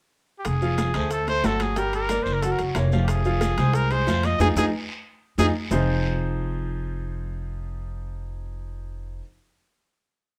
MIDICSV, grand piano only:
0, 0, Header, 1, 2, 480
1, 0, Start_track
1, 0, Key_signature, -4, "minor"
1, 0, Tempo, 327869
1, 662, Time_signature, 4, 2, 24, 8
1, 15205, End_track
2, 0, Start_track
2, 0, Title_t, "Grand piano"
2, 0, Program_c, 0, 0
2, 905, Note_on_c, 0, 53, 71
2, 912, Note_on_c, 0, 65, 72
2, 915, Note_on_c, 0, 77, 72
2, 1299, Note_off_c, 0, 53, 0
2, 1304, Note_off_c, 0, 65, 0
2, 1305, Note_off_c, 0, 77, 0
2, 1386, Note_on_c, 0, 57, 63
2, 1394, Note_on_c, 0, 69, 58
2, 1397, Note_on_c, 0, 72, 70
2, 1781, Note_off_c, 0, 57, 0
2, 1786, Note_off_c, 0, 69, 0
2, 1788, Note_off_c, 0, 72, 0
2, 1866, Note_on_c, 0, 57, 60
2, 1868, Note_on_c, 0, 69, 57
2, 1874, Note_on_c, 0, 72, 62
2, 2064, Note_off_c, 0, 57, 0
2, 2065, Note_off_c, 0, 69, 0
2, 2069, Note_off_c, 0, 72, 0
2, 2105, Note_on_c, 0, 54, 74
2, 2110, Note_on_c, 0, 66, 73
2, 2114, Note_on_c, 0, 78, 77
2, 2502, Note_off_c, 0, 54, 0
2, 2505, Note_off_c, 0, 66, 0
2, 2507, Note_off_c, 0, 78, 0
2, 2590, Note_on_c, 0, 55, 75
2, 2592, Note_on_c, 0, 67, 72
2, 2597, Note_on_c, 0, 79, 78
2, 2986, Note_off_c, 0, 55, 0
2, 2987, Note_off_c, 0, 67, 0
2, 2990, Note_off_c, 0, 79, 0
2, 3080, Note_on_c, 0, 58, 69
2, 3082, Note_on_c, 0, 70, 69
2, 3084, Note_on_c, 0, 74, 65
2, 3472, Note_off_c, 0, 58, 0
2, 3474, Note_off_c, 0, 70, 0
2, 3475, Note_off_c, 0, 74, 0
2, 3564, Note_on_c, 0, 54, 61
2, 3567, Note_on_c, 0, 66, 64
2, 3570, Note_on_c, 0, 78, 64
2, 3956, Note_off_c, 0, 54, 0
2, 3958, Note_off_c, 0, 66, 0
2, 3959, Note_off_c, 0, 78, 0
2, 4038, Note_on_c, 0, 58, 65
2, 4045, Note_on_c, 0, 70, 61
2, 4045, Note_on_c, 0, 73, 64
2, 4235, Note_off_c, 0, 58, 0
2, 4239, Note_off_c, 0, 70, 0
2, 4240, Note_off_c, 0, 73, 0
2, 4287, Note_on_c, 0, 53, 83
2, 4292, Note_on_c, 0, 65, 78
2, 4295, Note_on_c, 0, 77, 78
2, 4679, Note_off_c, 0, 53, 0
2, 4681, Note_off_c, 0, 65, 0
2, 4683, Note_off_c, 0, 77, 0
2, 4766, Note_on_c, 0, 53, 75
2, 4769, Note_on_c, 0, 65, 82
2, 4776, Note_on_c, 0, 77, 78
2, 5158, Note_off_c, 0, 53, 0
2, 5160, Note_off_c, 0, 65, 0
2, 5165, Note_off_c, 0, 77, 0
2, 5246, Note_on_c, 0, 56, 66
2, 5250, Note_on_c, 0, 68, 70
2, 5259, Note_on_c, 0, 72, 70
2, 5639, Note_off_c, 0, 56, 0
2, 5641, Note_off_c, 0, 68, 0
2, 5646, Note_off_c, 0, 72, 0
2, 5730, Note_on_c, 0, 56, 64
2, 5736, Note_on_c, 0, 68, 63
2, 5740, Note_on_c, 0, 72, 67
2, 5924, Note_off_c, 0, 56, 0
2, 5927, Note_off_c, 0, 68, 0
2, 5930, Note_off_c, 0, 72, 0
2, 5973, Note_on_c, 0, 53, 70
2, 5977, Note_on_c, 0, 65, 71
2, 5979, Note_on_c, 0, 77, 78
2, 6363, Note_off_c, 0, 53, 0
2, 6365, Note_off_c, 0, 65, 0
2, 6367, Note_off_c, 0, 77, 0
2, 6450, Note_on_c, 0, 65, 90
2, 6451, Note_on_c, 0, 63, 85
2, 6451, Note_on_c, 0, 68, 94
2, 6601, Note_off_c, 0, 65, 0
2, 6602, Note_off_c, 0, 63, 0
2, 6602, Note_off_c, 0, 68, 0
2, 6697, Note_on_c, 0, 63, 92
2, 6698, Note_on_c, 0, 65, 82
2, 6698, Note_on_c, 0, 68, 89
2, 6846, Note_off_c, 0, 63, 0
2, 6846, Note_off_c, 0, 65, 0
2, 6846, Note_off_c, 0, 68, 0
2, 7889, Note_on_c, 0, 68, 84
2, 7891, Note_on_c, 0, 63, 97
2, 7891, Note_on_c, 0, 65, 91
2, 8040, Note_off_c, 0, 68, 0
2, 8041, Note_off_c, 0, 63, 0
2, 8041, Note_off_c, 0, 65, 0
2, 8361, Note_on_c, 0, 53, 83
2, 8364, Note_on_c, 0, 60, 76
2, 8369, Note_on_c, 0, 63, 83
2, 8370, Note_on_c, 0, 65, 77
2, 8374, Note_on_c, 0, 72, 97
2, 8375, Note_on_c, 0, 68, 76
2, 13461, Note_off_c, 0, 53, 0
2, 13463, Note_off_c, 0, 60, 0
2, 13468, Note_off_c, 0, 63, 0
2, 13469, Note_off_c, 0, 65, 0
2, 13473, Note_off_c, 0, 72, 0
2, 13474, Note_off_c, 0, 68, 0
2, 15205, End_track
0, 0, End_of_file